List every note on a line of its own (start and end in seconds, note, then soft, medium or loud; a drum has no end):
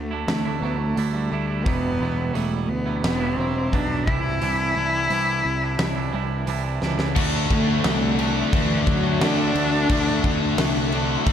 0.00 0.24 D2 medium
0.00 0.28 D3 medium
0.00 0.25 A3 medium
0.11 0.47 A3 medium
0.11 0.46 D4 medium
0.11 0.45 E4 medium
0.26 0.59 D2 medium
0.26 0.59 A3 medium
0.26 snare loud
0.26 open hi-hat medium
0.45 0.62 A3 medium
0.45 0.63 D4 medium
0.45 0.65 E4 medium
0.60 0.93 D2 medium
0.60 1.31 F#3 medium
0.60 0.97 A3 medium
0.60 0.78 B3 medium
0.64 0.97 D4 medium
0.64 0.99 E4 medium
0.77 1.10 A3 medium
0.96 1.28 D2 medium
0.96 1.48 D3 medium
0.96 1.15 A3 loud
0.96 1.14 D4 loud
0.96 1.13 E4 loud
0.96 open hi-hat medium
1.11 1.66 G3 medium
1.11 1.32 D4 medium
1.11 1.33 E4 medium
1.16 1.31 A3 medium
1.32 1.63 D2 medium
1.32 1.49 A3 medium
1.32 1.48 D4 medium
1.32 1.47 E4 medium
1.47 1.65 A3 medium
1.47 1.64 D4 medium
1.47 1.67 E4 medium
1.64 1.97 E1 medium
1.64 2.32 E2 loud
1.64 2.33 B2 medium
1.64 1.98 F#3 medium
1.64 2.00 G3 loud
1.64 2.35 B3 loud
1.64 2.00 B3 loud
1.64 2.02 E4 medium
1.64 kick loud
1.64 open hi-hat medium
1.99 2.31 E1 medium
1.99 2.18 F#3 medium
1.99 2.18 G3 medium
1.99 2.16 B3 medium
1.99 2.16 E4 medium
2.16 2.33 F#3 medium
2.16 2.35 G3 medium
2.16 2.34 B3 medium
2.16 2.36 E4 medium
2.33 2.66 E1 medium
2.33 3.03 E2 medium
2.33 3.03 B2 medium
2.33 2.68 F#3 loud
2.33 2.70 G3 loud
2.33 2.61 A3 medium
2.33 2.69 B3 loud
2.33 2.70 E4 medium
2.33 open hi-hat soft
2.64 2.70 A3 medium
2.68 3.00 D2 medium
2.68 3.02 B3 medium
2.68 muted clean electric guitar stroke soft
2.86 3.22 F#3 medium
2.86 3.21 G3 medium
2.86 3.56 B3 medium
2.86 3.20 E4 medium
3.02 3.35 E1 medium
3.02 3.38 B3 loud
3.02 snare loud
3.02 open hi-hat medium
3.20 3.37 F#3 medium
3.20 3.38 G3 medium
3.20 3.40 E4 medium
3.36 3.69 E1 medium
3.36 3.73 F#3 medium
3.36 3.73 G3 medium
3.36 3.74 C4 loud
3.41 3.75 E4 medium
3.72 4.08 B1 medium
3.72 4.05 E2 medium
3.72 4.05 B2 medium
3.72 3.92 F#3 medium
3.72 3.90 G3 loud
3.72 3.90 B3 medium
3.72 4.08 D4 loud
3.72 3.89 E4 loud
3.72 kick medium
3.72 open hi-hat medium
3.90 4.06 F#3 medium
3.90 4.06 G3 medium
3.90 4.05 B3 medium
3.90 4.09 E4 medium
4.06 4.38 C2 medium
4.06 4.39 C3 medium
4.06 4.40 E3 loud
4.06 4.26 G3 loud
4.06 4.24 D4 loud
4.06 6.47 E4 loud
4.06 4.23 E4 loud
4.06 kick loud
4.24 4.41 G3 medium
4.24 4.42 D4 medium
4.24 4.43 E4 medium
4.41 4.73 C2 loud
4.41 5.09 C3 loud
4.41 4.75 E3 loud
4.41 4.76 G3 loud
4.41 4.77 D4 loud
4.41 4.78 E4 loud
4.41 open hi-hat medium
4.76 5.07 C2 medium
4.76 5.10 E3 medium
4.76 4.95 G3 medium
4.76 4.94 D4 medium
4.76 4.92 E4 medium
4.93 5.11 G3 medium
4.93 5.11 D4 medium
4.93 5.12 E4 medium
5.10 5.41 C2 medium
5.10 5.79 C3 medium
5.10 5.44 E3 medium
5.10 5.45 G3 loud
5.10 5.44 D4 loud
5.10 5.45 E4 loud
5.10 open hi-hat medium
5.45 5.76 C2 medium
5.45 muted clean electric guitar stroke soft
5.62 5.98 G3 medium
5.62 5.96 D4 medium
5.62 5.95 E4 medium
5.79 6.10 C2 medium
5.79 snare loud
5.79 open hi-hat medium
5.96 6.12 G3 medium
5.96 6.13 D4 medium
5.96 6.14 E4 medium
6.12 6.44 C2 medium
6.12 6.46 E3 medium
6.12 6.47 G3 medium
6.12 6.48 D4 medium
6.12 6.49 E4 medium
6.47 6.78 C2 loud
6.47 6.99 C3 loud
6.47 6.80 E3 medium
6.47 6.66 G3 loud
6.47 6.64 D4 loud
6.47 6.63 E4 loud
6.47 open hi-hat medium
6.64 6.81 G3 medium
6.64 6.82 D4 medium
6.64 6.83 E4 medium
6.81 7.13 C#2 medium
6.81 7.14 E3 medium
6.81 7.00 G3 medium
6.81 6.98 D4 medium
6.81 6.97 E4 medium
6.81 snare medium
6.98 7.15 G3 medium
6.98 7.14 D4 medium
6.98 7.13 E4 medium
6.98 snare medium
7.15 7.45 D2 loud
7.15 8.22 D3 loud
7.15 8.20 A3 loud
7.15 11.33 D4 medium
7.15 8.18 D4 loud
7.15 11.33 F#4 medium
7.15 11.33 A4 medium
7.15 11.33 E5 medium
7.15 kick loud
7.15 crash loud
7.51 7.80 D2 loud
7.51 8.56 A3 loud
7.51 kick loud
7.51 crash medium
7.84 8.43 C2 loud
7.84 snare loud
7.84 crash medium
8.18 9.19 D3 medium
8.18 9.20 A3 medium
8.18 9.19 D4 medium
8.18 crash medium
8.52 8.82 D2 medium
8.52 9.87 D3 medium
8.52 8.88 E3 loud
8.52 9.88 A3 medium
8.52 9.89 D4 loud
8.52 kick loud
8.52 crash medium
8.87 9.16 D2 medium
8.87 9.23 F#3 loud
8.87 kick medium
8.87 crash medium
9.20 9.50 D2 loud
9.20 9.87 D3 medium
9.20 9.88 A3 medium
9.20 10.92 D4 loud
9.20 snare loud
9.20 crash medium
9.24 9.89 D4 medium
9.54 9.84 D2 loud
9.54 crash medium
9.89 10.19 D2 loud
9.89 10.90 D3 loud
9.89 10.91 A3 loud
9.89 10.92 D4 loud
9.89 kick loud
9.89 crash loud
10.07 snare soft
10.24 10.53 D2 medium
10.24 kick medium
10.24 crash medium
10.58 11.16 C2 loud
10.58 snare loud
10.58 crash loud
10.92 11.33 A3 medium
10.92 11.33 D4 medium
10.92 crash medium
10.96 11.33 D3 medium
11.26 11.33 D2 loud
11.26 11.33 D3 medium
11.26 11.33 A3 medium
11.26 11.33 D4 loud
11.26 kick loud
11.26 crash medium